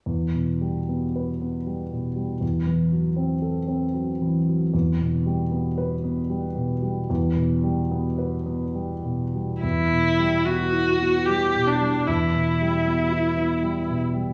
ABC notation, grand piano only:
X:1
M:3/4
L:1/8
Q:1/4=76
K:Em
V:1 name="Grand piano" clef=bass
(3E,, B,, G, (3B, B B, (3G, B,, G, | (3E,, E, F, (3C A C (3F, E, F, | (3E,, B,, G, (3B, B B, (3G, B,, G, | (3E,, B,, G, (3B, B B, (3G, B,, G, |
(3E,, B,, G, (3B, E B, (3G, B,, G, | (3E,, B,, G, (3B, E B, (3G, B,, G, |]